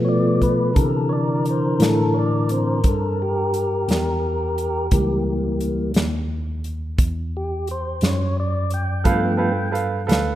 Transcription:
Already playing: tine electric piano B2, tonewheel organ F3 A3 B3
0.05 tonewheel organ C#5 D5
0.42 tonewheel organ B4, kick, closed hi-hat
0.74 tine electric piano C3, tonewheel organ D3 E3 A4 A#4, kick, closed hi-hat
1.09 tonewheel organ C#5 D5
1.45 closed hi-hat
1.50 tonewheel organ C5
1.79 tine electric piano A2, tonewheel organ A4, snare, closed hi-hat
2.14 tonewheel organ C#5
2.19 tonewheel organ D5
2.49 tonewheel organ D3 E3 C4, closed hi-hat
2.54 tonewheel organ C5
2.84 tine electric piano G2, kick, closed hi-hat
2.88 tonewheel organ A4
3.22 tonewheel organ G4
3.54 closed hi-hat
3.88 tine electric piano E2, snare, closed hi-hat
4.58 closed hi-hat
4.91 tine electric piano C#2, tonewheel organ E3 G3 A#3, kick, closed hi-hat
5.61 closed hi-hat
5.94 tine electric piano D#2, snare, closed hi-hat
6.64 closed hi-hat
6.98 tine electric piano E2, kick, closed hi-hat
7.37 tonewheel organ G4
7.67 tonewheel organ C5, closed hi-hat
8.01 tine electric piano F#2, tonewheel organ C#5, snare, closed hi-hat
8.40 tonewheel organ D5
8.70 tonewheel organ G5, closed hi-hat
9.04 tine electric piano G2, tonewheel organ F3 A3 B3 F#5, upright piano A4 B4 F5, kick, closed hi-hat
9.09 tonewheel organ G5
9.37 upright piano A4 B4 F5
9.72 upright piano A4 B4 F5, closed hi-hat
10.07 tine electric piano D2, upright piano A4 B4 F5, closed hi-hat
10.12 snare

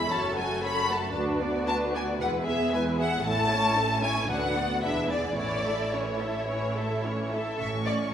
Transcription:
Already playing: viola section G#3 E4, violin section G#4 E5 B5
0.10 double bass section F#1, cello section F#2, viola section F#3 C#4, violin section A4 C#5 A5
0.36 viola section A3, violin section F#4 A4 G#5
0.63 viola section F#3 C#4, violin section A4 C#5 B5
0.88 viola section A3, violin section F#4 A4 A5
1.14 double bass section D2, cello section D2, violin section D4 B4, viola section D4 F#4
1.40 viola section B3 D4, violin section F#4 D5
1.66 violin section D4 B4 A5, viola section D4 F#4
1.93 viola section B3 D4, violin section F#4 D5 G#5
2.19 double bass section E1, cello section E2, viola section G#3 E4, violin section B4 F#5
2.46 viola section B3 G#4, violin section G#4 E5
2.72 viola section G#3 E4, violin section B4 G#5
2.97 viola section B3 G#4, violin section G#4 E5 F#5
3.23 double bass section A1, cello section A2, viola section A3 E4, violin section C#4 A4 A5
3.49 viola section C#4, violin section E4 C#5
3.76 viola section A3 E4, violin section C#4 A4
4.03 viola section C#4, violin section E4 C#5 G#5
4.28 cello section D2, double bass section D2, viola section F#3 D4, violin section D4 B4 F#5
4.56 viola section B3, violin section F#4 D5
4.82 double bass section E1, cello section E2, viola section G#3 D4, violin section E4 B4 E5
5.08 viola section B3 E4, violin section G#4 D5
5.36 double bass section A1, cello section A2, viola section E3 C#4, violin section E4 C#5 D5
5.65 viola section A3 E4, violin section A4 E5
5.93 viola section E3 C#4, violin section E4 C#5
6.02 violin section B4
6.08 violin section C#5
6.21 viola section A3 E4, violin section A4 E5
6.49 viola section E3 C#4, violin section E4 C#5
6.75 viola section A3 E4, violin section A4 E5
7.04 viola section E3 C#4, violin section E4 C#5
7.32 viola section A3 E4, violin section A4 E5
7.58 double bass section A1, cello section A2, viola section C#4, violin section E5 C#6
7.86 violin section D5

